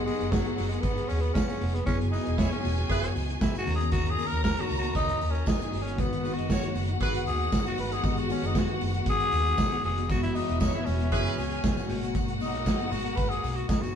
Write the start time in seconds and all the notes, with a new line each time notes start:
Already playing: G#1 D#3 F#3 G#3 B3 D#4 F#4 G4 G#4 F#5
0.05 G#3, open hi-hat, tambourine, muted conga, high conga
0.20 F#1, closed hi-hat, tambourine
0.32 F#3, kick, snare, tambourine
0.45 closed hi-hat, high conga
0.56 F#1 F#3, open hi-hat, tambourine, muted conga, low conga
0.69 G#3, closed hi-hat, tambourine, high conga
0.81 G#1 B3, kick, closed hi-hat, tambourine, muted conga
0.98 closed hi-hat
1.08 D#2 C#4, open hi-hat, tambourine
1.21 B3, closed hi-hat, tambourine
1.34 C#4, kick, snare, tambourine
1.47 C#4, closed hi-hat, tambourine, high conga, low conga
1.61 F1, open hi-hat, muted conga
1.74 B3, closed hi-hat, high conga
1.85 F#1 E3 F#3 B3 C#4 E4 F#4 G#4 G#5, kick, closed hi-hat, tambourine
2.01 closed hi-hat
2.12 D#4 E4 G#4 B4, open hi-hat, tambourine, high conga
2.25 E1 G#4 B4 D#5, closed hi-hat
2.37 E4 G#4 C#5, kick, snare, tambourine
2.51 C#4, closed hi-hat, high conga
2.64 E1, open hi-hat, tambourine, muted conga, low conga
2.78 closed hi-hat, tambourine, high conga
2.90 F#1 E4 G#4 B4, kick, closed hi-hat, tambourine, muted conga
3.03 closed hi-hat
3.15 C#2, open hi-hat, tambourine, muted conga
3.30 closed hi-hat, tambourine
3.41 E4, kick, snare, tambourine
3.54 closed hi-hat, tambourine, high conga, low conga
3.58 F#4
3.66 D#2 D#3 A#3 C#4 F#4 A#4 A#5, open hi-hat, muted conga
3.76 G#4
3.81 closed hi-hat, tambourine, high conga
3.92 F#4, kick, closed hi-hat, tambourine
4.06 G#4, closed hi-hat
4.19 open hi-hat, tambourine, high conga
4.27 A#4
4.32 D#2, closed hi-hat, tambourine
4.43 A#4, kick, snare, tambourine, muted conga
4.57 F#4, closed hi-hat, high conga
4.69 C#2, open hi-hat, tambourine, muted conga, low conga
4.79 F#4
4.83 closed hi-hat, high conga
4.95 C#2 D#4, kick, closed hi-hat, tambourine
5.09 closed hi-hat
5.21 D#2, open hi-hat, tambourine
5.31 C#4
5.35 closed hi-hat, tambourine
5.46 D#4 G#4 G#5, kick, snare, tambourine, muted conga
5.60 closed hi-hat, tambourine, high conga, low conga
5.72 G1, open hi-hat, muted conga
5.82 C#4
5.86 closed hi-hat, high conga
5.96 G#1 D#3 G#3 B3 F#4 F#5, kick, closed hi-hat, tambourine, muted conga
6.13 closed hi-hat
6.24 F#4 G#4 B4, open hi-hat, tambourine, high conga
6.33 F#4
6.38 F#1 G#4 B4 D#5, closed hi-hat
6.49 F#4 A#4 C#5, kick, snare, tambourine, muted conga
6.63 closed hi-hat, high conga
6.74 F#1, open hi-hat, tambourine, muted conga, low conga
6.87 closed hi-hat, high conga
7.00 G#1 F#4 G#4 B4, kick, closed hi-hat, tambourine, muted conga
7.15 closed hi-hat
7.26 D#2 G#4, open hi-hat, tambourine, muted conga
7.41 closed hi-hat
7.52 kick, snare, tambourine
7.66 F#4, closed hi-hat, tambourine, high conga, low conga
7.78 G1 B4, open hi-hat
7.91 G#4, closed hi-hat, tambourine, high conga
8.03 G#1 D#3 G#3 B3 D#4 G4, kick, closed hi-hat, tambourine
8.12 G#4
8.17 F#4, closed hi-hat
8.30 C#4, open hi-hat, tambourine, muted conga, high conga
8.43 F#1 D#4, closed hi-hat, tambourine
8.55 F#4, kick, snare, tambourine
8.68 closed hi-hat, high conga
8.81 F#1, open hi-hat, tambourine, muted conga, low conga
8.94 closed hi-hat, high conga
9.06 G#1 G#4, kick, closed hi-hat, tambourine, muted conga
9.20 closed hi-hat
9.32 D#2, open hi-hat, tambourine, muted conga
9.46 closed hi-hat, tambourine
9.58 kick, snare, tambourine
9.72 closed hi-hat, tambourine, high conga, low conga
9.84 F1 G#4, open hi-hat
9.98 closed hi-hat, tambourine, high conga
10.09 F#1 E3 G#3 B3 E4 F#4 E5, kick, closed hi-hat, tambourine
10.23 E4, closed hi-hat
10.35 D#4 E4 G#4 B4, open hi-hat, tambourine, muted conga, high conga
10.48 E1 G#4 B4 D#5, closed hi-hat, tambourine
10.60 D#4 E4 G#4 C#5, kick, snare, tambourine
10.74 E4, closed hi-hat, high conga
10.85 E1 C#4, open hi-hat, tambourine, muted conga, low conga
11.00 closed hi-hat, high conga
11.12 F#1 E4 G#4 B4 G#5, kick, closed hi-hat, tambourine
11.26 closed hi-hat
11.37 C#2, open hi-hat, tambourine, muted conga
11.52 closed hi-hat
11.64 kick, snare, tambourine
11.77 closed hi-hat, tambourine, high conga, low conga
11.87 G#1 B2 G#3 A#3 F#4 F#5, open hi-hat, muted conga
12.03 closed hi-hat, tambourine, high conga
12.15 kick, closed hi-hat, tambourine
12.28 closed hi-hat
12.40 D#4, open hi-hat, tambourine, muted conga, high conga
12.55 B1, closed hi-hat
12.66 kick, snare, tambourine, muted conga
12.80 closed hi-hat, high conga
12.91 G#1 F#4, open hi-hat, tambourine, low conga
13.05 closed hi-hat, high conga
13.16 G#1 B4, kick, closed hi-hat, tambourine
13.29 G#4, closed hi-hat
13.43 B1, open hi-hat, tambourine
13.56 F#4, closed hi-hat
13.68 D#4, kick, snare, tambourine
13.81 F#4, closed hi-hat, tambourine, high conga, low conga